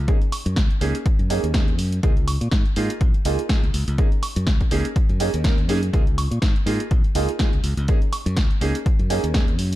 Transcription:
0.08 grand piano A#3 C#4 D#4 G#4, kick, closed hi-hat
0.22 closed hi-hat
0.32 open hi-hat, high woodblock
0.46 fingered electric bass F#2, closed hi-hat
0.56 fingered electric bass C#2, kick, snare, closed hi-hat
0.71 closed hi-hat
0.81 fingered electric bass C#2, grand piano A#3 C#4 D#4 G#4, open hi-hat
0.95 closed hi-hat
1.06 kick, closed hi-hat
1.19 fingered electric bass F#2, closed hi-hat
1.30 grand piano A#3 C#4 D#4 G#4, open hi-hat
1.43 fingered electric bass D#2, closed hi-hat
1.54 grand piano A#3 C#4 D#4 G#4, kick, snare, closed hi-hat
1.68 closed hi-hat
1.79 fingered electric bass F#2, open hi-hat
1.92 closed hi-hat
2.03 fingered electric bass C#2, grand piano A#3 D#4 F4 G#4, kick, closed hi-hat
2.17 closed hi-hat
2.28 open hi-hat, high woodblock
2.41 fingered electric bass A#2, closed hi-hat
2.51 fingered electric bass G#2, kick, snare, closed hi-hat
2.66 closed hi-hat
2.76 fingered electric bass G#2, grand piano A#3 D#4 F4 G#4, open hi-hat
2.90 closed hi-hat
3.01 fingered electric bass A#1, kick, closed hi-hat
3.14 closed hi-hat
3.25 fingered electric bass C#2, grand piano A#3 D#4 F4 G#4, open hi-hat
3.39 closed hi-hat
3.49 grand piano A#3 D#4 F4 G#4, kick, snare, closed hi-hat
3.63 fingered electric bass C#2, closed hi-hat
3.74 fingered electric bass C#2, open hi-hat
3.88 fingered electric bass C#2, closed hi-hat
3.98 grand piano A#3 C#4 D#4 G#4, kick, closed hi-hat
4.12 closed hi-hat
4.23 open hi-hat, high woodblock
4.36 fingered electric bass F#2, closed hi-hat
4.47 fingered electric bass C#2, kick, snare, closed hi-hat
4.61 kick, closed hi-hat
4.71 fingered electric bass C#2, grand piano A#3 C#4 D#4 G#4, open hi-hat
4.85 closed hi-hat
4.96 kick, closed hi-hat
5.09 fingered electric bass F#2, closed hi-hat
5.20 grand piano A#3 C#4 D#4 G#4, open hi-hat
5.34 fingered electric bass D#2, closed hi-hat
5.44 grand piano A#3 C#4 D#4 A#4, kick, snare, closed hi-hat
5.58 closed hi-hat
5.69 fingered electric bass F#2, grand piano A#3 C#4 D#4 G#4, open hi-hat
5.83 closed hi-hat
5.93 fingered electric bass C#2, grand piano A#3 D#4 F4 G#4, kick, closed hi-hat
6.07 closed hi-hat
6.18 open hi-hat, high woodblock
6.31 fingered electric bass A#2, closed hi-hat
6.42 fingered electric bass G#2, kick, snare, closed hi-hat
6.56 closed hi-hat
6.66 fingered electric bass G#2, grand piano A#3 D#4 F4 G#4, open hi-hat
6.80 closed hi-hat
6.91 fingered electric bass A#1, kick, closed hi-hat
7.04 closed hi-hat
7.15 fingered electric bass C#2, grand piano A#3 D#4 F4 G#4, open hi-hat
7.29 closed hi-hat
7.39 grand piano A#3 D#4 F4 G#4, kick, snare, closed hi-hat
7.53 fingered electric bass C#2, closed hi-hat
7.64 fingered electric bass C#2, open hi-hat
7.77 fingered electric bass C#2, closed hi-hat
7.88 grand piano A#3 C#4 D#4 G#4, kick, closed hi-hat
8.02 closed hi-hat
8.13 open hi-hat, high woodblock
8.26 fingered electric bass F#2, closed hi-hat
8.37 fingered electric bass C#2, kick, snare, closed hi-hat
8.51 closed hi-hat
8.61 fingered electric bass C#2, grand piano A#3 C#4 D#4 G#4, open hi-hat
8.75 closed hi-hat
8.86 kick, closed hi-hat
8.99 fingered electric bass F#2, closed hi-hat
9.10 grand piano A#3 C#4 D#4 G#4, open hi-hat
9.24 fingered electric bass D#2, closed hi-hat
9.34 grand piano A#3 C#4 D#4 G#4, kick, snare, closed hi-hat
9.48 closed hi-hat
9.59 fingered electric bass F#2, open hi-hat
9.73 closed hi-hat

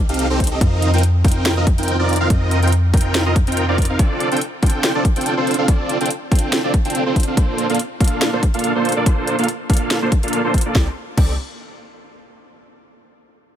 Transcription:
Already playing: 808-style bass C2
0.09 supersaw synth C4 D#4 G4 A4 F5, closed hi-hat
0.14 closed hi-hat
0.19 closed hi-hat
0.30 supersaw synth C4 D#4 G4 A4 C5
0.40 kick, closed hi-hat
0.44 closed hi-hat
0.47 closed hi-hat
0.51 supersaw synth C4 D#4 G4 A4 D#5
0.61 808-style bass F2, supersaw synth C4 D#4 F4 A#4 D#5, kick, closed hi-hat
0.82 closed hi-hat
0.94 supersaw synth C4 D#4 F4 A#4 G5, closed hi-hat
0.98 closed hi-hat
1.03 closed hi-hat
1.25 supersaw synth C4 D#4 F4 A#4 G5, kick, closed hi-hat
1.28 closed hi-hat
1.32 closed hi-hat
1.46 snare, closed hi-hat
1.57 supersaw synth C4 D#4 F4 A#4 D#5
1.67 kick, closed hi-hat
1.78 supersaw synth C4 D#4 F4 A#4 G5, closed hi-hat
1.83 closed hi-hat
1.88 closed hi-hat
1.99 supersaw synth C4 D#4 F4 A#4 D5
2.09 closed hi-hat
2.13 closed hi-hat
2.16 closed hi-hat
2.20 supersaw synth C4 D#4 F4 A#4 F5
2.30 808-style bass F2, supersaw synth C4 D#4 F4 A#4 D#5, kick, closed hi-hat
2.51 closed hi-hat
2.63 supersaw synth C4 D#4 F4 A#4 G5, closed hi-hat
2.68 closed hi-hat
2.72 closed hi-hat
2.94 supersaw synth C4 D#4 F4 A#4 G5, kick, closed hi-hat
2.97 closed hi-hat
3.01 closed hi-hat
3.15 snare, closed hi-hat
3.26 supersaw synth C4 D#4 F4 A#4 D#5
3.36 kick, closed hi-hat
3.47 supersaw synth C4 D#4 F4 A#4 G5, closed hi-hat
3.52 closed hi-hat
3.57 closed hi-hat
3.68 supersaw synth C4 D#4 F4 A#4 D5
3.78 kick, closed hi-hat
3.82 closed hi-hat
3.85 closed hi-hat
3.90 supersaw synth C4 D#4 F4 A#4 F5
3.99 supersaw synth C4 D4 F4 A4 D5, kick, closed hi-hat
4.20 closed hi-hat
4.32 supersaw synth C4 D4 F4 A4 G5, closed hi-hat
4.37 closed hi-hat
4.41 closed hi-hat
4.63 supersaw synth C4 D4 F4 A4 G5, kick, closed hi-hat
4.66 closed hi-hat
4.70 closed hi-hat
4.84 snare, closed hi-hat
4.95 supersaw synth C4 D4 F4 A4 D5
5.05 kick, closed hi-hat
5.16 supersaw synth C4 D4 F4 A4 G5, closed hi-hat
5.21 closed hi-hat
5.26 closed hi-hat
5.37 supersaw synth C4 D4 F4 A4 C5
5.47 closed hi-hat
5.51 closed hi-hat
5.54 closed hi-hat
5.58 supersaw synth C4 D4 F4 A4 F5
5.68 supersaw synth C4 D4 F4 A4 D5, kick, closed hi-hat
5.89 closed hi-hat
6.01 supersaw synth C4 D4 F4 A4 G5, closed hi-hat
6.06 closed hi-hat
6.11 closed hi-hat
6.32 supersaw synth C4 D4 F4 A4 G5, kick, closed hi-hat
6.35 closed hi-hat
6.39 closed hi-hat
6.53 snare, closed hi-hat
6.64 supersaw synth C4 D4 F4 A4 D5
6.74 kick, closed hi-hat
6.85 supersaw synth C4 D4 F4 A4 G5, closed hi-hat
6.90 closed hi-hat
6.95 closed hi-hat
7.06 supersaw synth C4 D4 F4 A4 C5
7.16 kick, closed hi-hat
7.20 closed hi-hat
7.23 closed hi-hat
7.27 supersaw synth C4 D4 F4 A4 F5
7.37 supersaw synth A#3 D4 F4 A4 C5, kick, closed hi-hat
7.58 closed hi-hat
7.70 supersaw synth A#3 D4 F4 A4 F5, closed hi-hat
7.75 closed hi-hat
7.79 closed hi-hat
8.00 supersaw synth A#3 D4 F4 A4 F5, kick, closed hi-hat
8.04 closed hi-hat
8.08 closed hi-hat
8.22 snare, closed hi-hat
8.33 supersaw synth A#3 D4 F4 A4 C5
8.43 kick, closed hi-hat
8.54 supersaw synth A#3 D4 F4 A4 F5, closed hi-hat
8.59 closed hi-hat
8.64 closed hi-hat
8.75 supersaw synth A#3 D4 F4 A4 C5
8.85 closed hi-hat
8.89 closed hi-hat
8.92 closed hi-hat
8.96 supersaw synth A#3 D4 F4 A4 D5
9.06 supersaw synth A#3 D4 F4 A4 C5, kick, closed hi-hat
9.27 closed hi-hat
9.39 supersaw synth A#3 D4 F4 A4 F5, closed hi-hat
9.44 closed hi-hat
9.48 closed hi-hat
9.70 supersaw synth A#3 D4 F4 A4 F5, kick, closed hi-hat
9.74 closed hi-hat
9.77 closed hi-hat
9.91 snare, closed hi-hat
10.02 supersaw synth A#3 D4 F4 A4 C5
10.12 kick, closed hi-hat
10.23 supersaw synth A#3 D4 F4 A4 F5, closed hi-hat
10.28 closed hi-hat
10.33 closed hi-hat
10.44 supersaw synth A#3 D4 F4 A4 C5
10.54 kick, closed hi-hat
10.58 closed hi-hat
10.61 closed hi-hat
10.66 supersaw synth A#3 D4 F4 A4 D5
10.75 808-style bass C2, supersaw synth C4 D#4 G4 A4 D5, kick, snare
11.17 808-style bass C2, supersaw synth C4 D#4 G4 A4 D5, kick, crash

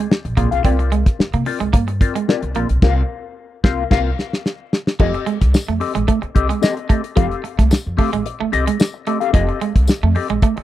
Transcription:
0.10 muted clean electric guitar stroke, snare
0.25 upright bass A#1, muted clean electric guitar stroke, closed hi-hat
0.37 upright bass A#1, clean electric guitar A#3 C4 F4 G#4 D5, kick, closed hi-hat
0.51 upright bass B1, clean electric guitar C4 F4 G#4 F5, closed hi-hat
0.64 upright bass C2, clean electric guitar C4 F4 A#4 D5, kick, closed hi-hat
0.79 muted clean electric guitar stroke, closed hi-hat
0.92 clean electric guitar G#3, closed hi-hat
1.06 muted clean electric guitar stroke, kick, snare, closed hi-hat
1.19 muted clean electric guitar stroke, muted upright bass stroke, snare
1.33 upright bass C3, clean electric guitar A#3, closed hi-hat
1.46 clean electric guitar C4 F4 A#4 D5, muted clean electric guitar stroke, open hi-hat
1.60 upright bass C2, clean electric guitar G#3, muted clean electric guitar stroke, closed hi-hat
1.73 upright bass G2, clean electric guitar A#3, muted clean electric guitar stroke, kick, closed hi-hat
1.88 muted clean electric guitar stroke, closed hi-hat
2.01 clean electric guitar C4 F4 A#4 D5, kick, closed hi-hat
2.15 clean electric guitar G#3, muted clean electric guitar stroke, closed hi-hat
2.28 clean electric guitar C4 F4 A#4 D5, snare
2.42 upright bass C2, muted clean electric guitar stroke, closed hi-hat
2.55 upright bass A#1, clean electric guitar A#3 C4 F4 A#4 D5, closed hi-hat
2.69 upright bass B1, muted clean electric guitar stroke, closed hi-hat
2.82 upright bass C2, clean electric guitar C4 F4 A#4 F5, kick, snare, crash
3.64 upright bass C2, clean electric guitar C4 F4 A#4 F5, kick, snare
3.90 upright bass C2, clean electric guitar C4 F4 A#4 F5, kick, snare, crash
4.19 snare
4.33 snare
4.46 snare
4.73 snare
4.87 snare
4.99 upright bass F1, clean electric guitar F3 C4 G4 A4 D#5, kick, crash
5.14 muted clean electric guitar stroke, closed hi-hat
5.26 clean electric guitar G#3, closed hi-hat
5.41 upright bass C2, muted clean electric guitar stroke, kick, snare, closed hi-hat
5.53 muted clean electric guitar stroke, muted upright bass stroke, snare, tambourine
5.68 upright bass F2, clean electric guitar A3, closed hi-hat
5.80 clean electric guitar C4 G4 A4 D#5, muted clean electric guitar stroke, open hi-hat
5.95 upright bass A1, clean electric guitar G#3, muted clean electric guitar stroke, closed hi-hat
6.08 clean electric guitar A3, muted clean electric guitar stroke, kick, closed hi-hat
6.22 muted clean electric guitar stroke, muted upright bass stroke, closed hi-hat
6.35 upright bass C2, clean electric guitar C4 G4 A4 D#5, kick, closed hi-hat
6.49 clean electric guitar G#3, muted clean electric guitar stroke, closed hi-hat
6.62 clean electric guitar C4 G4 A4 D#5, snare, tambourine
6.77 muted clean electric guitar stroke, closed hi-hat
6.89 clean electric guitar A3 C4 G4 A4 D#5, kick, closed hi-hat
7.03 muted clean electric guitar stroke, closed hi-hat
7.16 upright bass F1, clean electric guitar F3 C4 G4 A4 F5, kick, closed hi-hat
7.31 closed hi-hat
7.44 muted clean electric guitar stroke, closed hi-hat
7.58 upright bass C2, clean electric guitar A3, muted clean electric guitar stroke, kick, snare, closed hi-hat
7.70 muted clean electric guitar stroke, muted upright bass stroke, snare, tambourine
7.86 upright bass F2
7.97 clean electric guitar A3 C4 G4 A4 F5, kick, open hi-hat
8.12 upright bass A1, clean electric guitar G#3, muted clean electric guitar stroke, closed hi-hat
8.25 muted clean electric guitar stroke, closed hi-hat
8.40 clean electric guitar A3, muted clean electric guitar stroke, muted upright bass stroke
8.52 upright bass C2, clean electric guitar C4 G4 A4 D#5, muted clean electric guitar stroke, closed hi-hat
8.67 clean electric guitar G#3, muted clean electric guitar stroke, closed hi-hat
8.80 muted clean electric guitar stroke, snare, tambourine
8.94 muted clean electric guitar stroke
9.07 clean electric guitar A3 C4 G4 A4 D#5, closed hi-hat
9.20 clean electric guitar C4 G4 A4 F5, closed hi-hat
9.33 upright bass F1, clean electric guitar F3 C4 G4 A4 D#5, kick, closed hi-hat
9.49 muted clean electric guitar stroke, closed hi-hat
9.61 clean electric guitar G#3, closed hi-hat
9.75 upright bass C2, muted clean electric guitar stroke, kick, closed hi-hat
9.88 muted clean electric guitar stroke, muted upright bass stroke, snare, tambourine
10.03 upright bass F2, clean electric guitar A3
10.15 clean electric guitar C4 G4 A4 D#5, muted clean electric guitar stroke, open hi-hat
10.29 upright bass A1, clean electric guitar G#3, closed hi-hat
10.42 clean electric guitar A3, muted clean electric guitar stroke, kick, closed hi-hat
10.56 muted clean electric guitar stroke, muted upright bass stroke, closed hi-hat

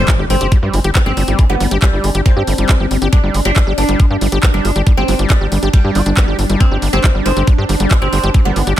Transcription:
Already playing: oud C4, synth drone D4, impact
0.08 acid bass G#3, kick, clap, closed hi-hat
0.19 analog synth bass G1, acid bass G4
0.30 analog synth bass G1, acid bass G3, oud C4, open hi-hat
0.41 analog synth bass G1, acid bass G4, closed hi-hat
0.52 acid bass G3, kick, closed hi-hat
0.63 analog synth bass G2, acid bass G3
0.74 analog synth bass G1, acid bass G#3, open hi-hat
0.84 analog synth bass G1, acid bass G4, closed hi-hat
0.95 acid bass G3, kick, clap, closed hi-hat
1.06 analog synth bass G1, oud C4, acid bass G4
1.17 analog synth bass G1, acid bass G3, open hi-hat
1.28 analog synth bass G1, acid bass G3, closed hi-hat
1.39 acid bass G#3, kick, closed hi-hat
1.50 analog synth bass G1, oud B3, acid bass G4
1.60 analog synth bass G1, acid bass G3, open hi-hat
1.71 analog synth bass G1, acid bass G4, closed hi-hat
1.82 oud G3, acid bass G3, kick, clap, closed hi-hat
1.93 analog synth bass G1, acid bass G3
2.04 analog synth bass G1, acid bass G#3, open hi-hat
2.15 analog synth bass G1, acid bass G4, closed hi-hat
2.26 acid bass G3, oud C4, kick, closed hi-hat
2.37 analog synth bass G2, acid bass G4
2.47 analog synth bass G1, acid bass G3, open hi-hat
2.58 analog synth bass G1, acid bass G3, closed hi-hat
2.69 acid bass G#3, kick, clap, closed hi-hat
2.80 analog synth bass G1, acid bass G4
2.91 analog synth bass G1, acid bass G3, open hi-hat
3.02 analog synth bass G1, acid bass G4, closed hi-hat
3.13 acid bass G3, oud D4, kick, closed hi-hat
3.23 analog synth bass G1, acid bass G3
3.34 analog synth bass G1, acid bass G#3, open hi-hat
3.45 analog synth bass G1, oud D4, acid bass G4, closed hi-hat
3.56 acid bass G3, kick, clap, closed hi-hat
3.67 analog synth bass G1, acid bass G4
3.78 analog synth bass G1, acid bass G3, oud D4, open hi-hat
3.89 analog synth bass G1, acid bass G3, closed hi-hat
4.00 acid bass G#3, kick, closed hi-hat
4.10 analog synth bass G2, acid bass G4
4.21 analog synth bass G1, acid bass G3, open hi-hat
4.32 analog synth bass G1, acid bass G4, closed hi-hat
4.43 acid bass G3, kick, clap, closed hi-hat
4.54 analog synth bass G1, acid bass G3, oud D4
4.65 analog synth bass G1, acid bass G#3, open hi-hat
4.76 analog synth bass G1, acid bass G4, closed hi-hat
4.87 acid bass G3, kick, closed hi-hat
4.97 analog synth bass G1, oud C4, acid bass G4
5.08 analog synth bass G1, acid bass G3, open hi-hat
5.19 analog synth bass G1, acid bass G3, closed hi-hat
5.30 oud G3, acid bass G#3, kick, clap, closed hi-hat
5.41 analog synth bass G1, acid bass G4
5.52 analog synth bass G1, acid bass G3, open hi-hat
5.63 analog synth bass G1, acid bass G4, closed hi-hat
5.73 oud G3, acid bass G3, kick, closed hi-hat
5.84 analog synth bass G2, acid bass G3
5.95 analog synth bass G1, acid bass G4, open hi-hat
6.06 analog synth bass G1, acid bass D4, closed hi-hat
6.17 acid bass B3, kick, clap, closed hi-hat
6.28 analog synth bass G1, acid bass G4
6.39 analog synth bass G1, acid bass G3, open hi-hat
6.50 analog synth bass G1, acid bass G3, closed hi-hat
6.60 acid bass G#3, oud C4, kick, closed hi-hat
6.71 analog synth bass G1, acid bass G4
6.82 analog synth bass G1, acid bass G3, open hi-hat
6.93 analog synth bass G1, oud C4, acid bass G4, closed hi-hat
7.04 acid bass G3, kick, clap, closed hi-hat
7.15 analog synth bass G1, acid bass G3
7.26 analog synth bass G1, acid bass G#3, oud C4, open hi-hat
7.37 analog synth bass G1, acid bass G4, closed hi-hat
7.47 acid bass G3, kick, closed hi-hat
7.58 analog synth bass G2, acid bass G4
7.69 analog synth bass G1, acid bass G3, open hi-hat
7.80 analog synth bass G1, acid bass G3, closed hi-hat
7.91 acid bass G#3, kick, clap, closed hi-hat
8.02 analog synth bass G1, oud C4, acid bass G4
8.13 analog synth bass G1, acid bass G3, open hi-hat
8.23 analog synth bass G1, acid bass G4, closed hi-hat
8.34 acid bass G3, kick, closed hi-hat
8.45 analog synth bass G1, acid bass G3, oud B3
8.56 analog synth bass G1, acid bass G#3, open hi-hat
8.67 analog synth bass G1, acid bass G4, closed hi-hat

